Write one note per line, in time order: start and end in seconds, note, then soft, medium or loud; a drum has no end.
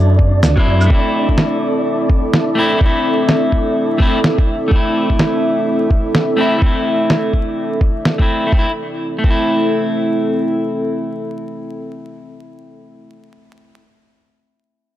0.00 0.18 F#2 medium
0.00 0.15 F#3 medium
0.00 0.17 C4 medium
0.00 0.86 C4 medium
0.00 8.54 D4 medium
0.00 0.19 E4 medium
0.00 0.87 F#4 medium
0.00 0.86 A4 medium
0.00 0.86 D5 medium
0.00 8.54 D5 medium
0.19 0.41 F#2 medium
0.19 kick loud
0.43 0.56 D2 medium
0.43 snare loud
0.43 shaker medium
0.56 0.87 F#3 medium
0.56 0.86 C4 medium
0.56 0.89 E4 medium
0.56 kick loud
0.56 claves soft
0.67 0.89 F#2 loud
0.81 claves medium
0.81 shaker soft
0.86 2.53 A3 medium
0.90 2.55 C4 medium
0.90 8.48 C4 medium
0.90 8.48 E4 medium
0.90 8.48 A4 medium
0.90 8.48 E5 medium
0.90 kick loud
0.94 2.57 E4 medium
1.29 kick medium
1.38 snare loud
2.10 kick loud
2.33 snare loud
2.55 2.77 A3 medium
2.55 2.79 C4 medium
2.55 2.80 E4 loud
2.78 3.96 A3 medium
2.78 3.98 C4 medium
2.78 kick loud
2.86 4.00 E4 medium
3.29 snare loud
3.52 kick medium
3.98 4.18 A3 medium
3.98 4.19 C4 medium
3.98 4.20 E4 loud
3.98 kick medium
4.24 snare medium
4.38 kick medium
4.68 6.34 A3 medium
4.68 6.36 C4 medium
4.68 kick loud
4.76 6.38 E4 medium
5.10 kick medium
5.19 snare medium
5.91 kick medium
6.15 snare loud
6.37 6.57 A3 medium
6.37 6.60 C4 medium
6.41 6.61 E4 loud
6.58 7.77 A3 medium
6.58 kick loud
6.66 7.81 E4 medium
7.10 snare medium
7.33 kick medium
7.81 kick medium
8.05 snare medium
8.18 8.46 A3 medium
8.18 8.51 C4 medium
8.18 8.51 E4 medium
8.18 kick medium
8.47 8.65 A3 medium
8.52 13.09 C4 medium
8.52 13.10 E4 medium
8.52 13.09 A4 medium
8.52 kick loud
8.59 8.71 E4 medium
9.18 13.77 A3 medium
9.24 13.80 C4 medium
9.24 kick loud
9.30 13.83 E4 medium